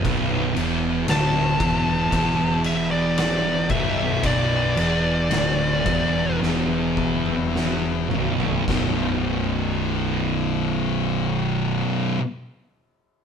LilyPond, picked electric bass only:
\new Staff \with { instrumentName = "Picked electric bass" } { \clef bass \time 4/4 \key b \minor \tempo 4 = 54 b,,,8 e,,8 d,,8 e,,8 e,,4. b,,,8 | b,,,8 e,,8 d,,8 e,,8 e,,4. b,,,8 | b,,,1 | }